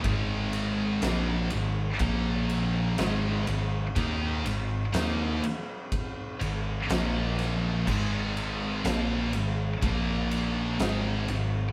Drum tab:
CC |--------|--------|x-------|
RD |xxxxxxxx|xxxxxxxx|-xxxxxxx|
SD |--o---o-|--o---oo|--o---o-|
BD |o---o---|o---o---|o---o---|